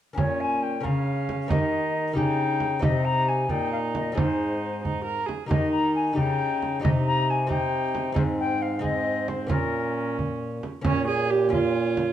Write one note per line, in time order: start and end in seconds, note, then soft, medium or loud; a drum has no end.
0.13 0.79 A#3 soft
0.13 0.80 C#4 soft
0.13 0.81 A#4 soft
0.17 0.80 A#2 soft
0.17 0.81 A#2 medium
0.17 0.80 C#4 medium
0.17 0.42 C#5 medium
0.17 frame drum medium
0.40 0.64 G#5 medium
0.63 0.86 G5 medium
0.80 1.47 C#3 soft
0.80 1.47 A#3 soft
0.80 1.47 C#4 soft
0.80 1.51 C#4 medium
0.80 1.48 A#4 soft
0.80 1.50 F5 medium
0.85 1.50 C#3 medium
0.85 frame drum soft
1.29 frame drum medium
1.48 2.13 D#3 soft
1.48 2.12 A#3 soft
1.48 2.13 D#4 soft
1.48 2.16 D#4 medium
1.48 2.14 G4 soft
1.48 2.15 D#5 medium
1.48 frame drum medium
1.52 2.16 D#3 medium
2.13 2.79 C#3 soft
2.13 2.79 A#3 soft
2.13 2.79 D#4 soft
2.13 2.82 D#4 medium
2.13 2.80 G4 soft
2.13 2.81 G5 medium
2.13 frame drum soft
2.18 2.82 C#3 medium
2.60 frame drum medium
2.79 3.45 C3 soft
2.79 4.10 C4 soft
2.79 4.11 D#4 soft
2.79 4.12 G4 soft
2.79 frame drum medium
2.83 3.51 C3 medium
2.83 3.48 D#4 medium
2.83 3.06 D#5 medium
3.05 3.30 A#5 medium
3.28 3.52 G#5 medium
3.49 4.12 A#2 soft
3.49 4.18 A#2 medium
3.49 4.15 D#4 medium
3.49 3.72 G5 medium
3.49 frame drum soft
3.72 3.78 F5 medium
3.95 4.16 D#5 medium
3.95 frame drum medium
4.12 5.24 G#2 soft
4.12 5.44 C4 soft
4.12 5.45 D#4 soft
4.12 4.77 D#4 medium
4.12 5.46 G#4 soft
4.16 5.28 G#2 medium
4.16 4.82 C5 medium
4.16 frame drum medium
4.83 5.04 D#4 medium
4.83 frame drum soft
5.04 5.28 A#4 medium
5.26 5.49 G#4 medium
5.26 frame drum medium
5.46 6.13 D#3 soft
5.46 6.11 A#3 soft
5.46 6.12 D#4 soft
5.46 6.13 D#4 medium
5.46 6.14 G4 soft
5.51 6.20 D#3 medium
5.51 5.71 D#5 medium
5.51 frame drum medium
5.72 5.94 A#5 medium
5.95 6.16 G#5 medium
6.13 6.79 C#3 soft
6.13 6.79 A#3 soft
6.13 6.80 D#4 soft
6.13 6.81 G4 soft
6.13 6.82 G5 medium
6.17 6.84 C#3 medium
6.17 6.82 D#4 medium
6.17 frame drum soft
6.62 frame drum soft
6.80 8.12 C3 soft
6.80 7.46 C4 soft
6.80 7.46 D#4 soft
6.80 7.48 D#4 medium
6.80 7.47 G4 soft
6.80 6.89 D#5 medium
6.85 8.14 C3 medium
6.85 frame drum medium
7.07 7.32 A#5 medium
7.30 7.50 G#5 medium
7.47 8.11 C4 soft
7.47 8.13 D#4 soft
7.47 8.15 D#4 medium
7.47 8.14 G4 soft
7.47 8.15 G5 medium
7.47 frame drum soft
7.95 frame drum medium
8.12 8.78 C4 soft
8.12 8.79 D#4 soft
8.12 8.80 G#4 soft
8.12 frame drum medium
8.16 9.47 G#2 soft
8.16 9.47 G#2 medium
8.16 8.79 C4 medium
8.16 8.22 C5 medium
8.39 8.64 G5 medium
8.62 8.83 F5 medium
8.79 9.47 C4 soft
8.79 9.52 C4 medium
8.79 9.47 D#4 soft
8.79 9.48 G#4 soft
8.83 9.30 D#5 medium
8.83 frame drum soft
9.28 9.50 C5 medium
9.28 frame drum medium
9.47 10.59 A#2 soft
9.47 10.80 A#3 soft
9.47 10.81 C#4 soft
9.47 10.81 F4 soft
9.47 10.17 A#4 medium
9.47 frame drum medium
9.51 10.62 A#2 medium
9.51 10.66 C#4 medium
10.19 frame drum soft
10.63 frame drum medium
10.81 12.13 A#2 medium
10.81 11.48 A#3 soft
10.81 11.49 C#4 soft
10.81 frame drum medium
10.86 11.06 C#4 medium
10.86 11.48 C#5 medium
11.07 11.32 G#4 medium
11.30 11.52 G4 medium
11.49 12.13 A#3 soft
11.49 12.13 C#4 soft
11.49 12.13 F4 medium
11.49 12.13 C#5 medium
11.49 frame drum soft
11.97 frame drum medium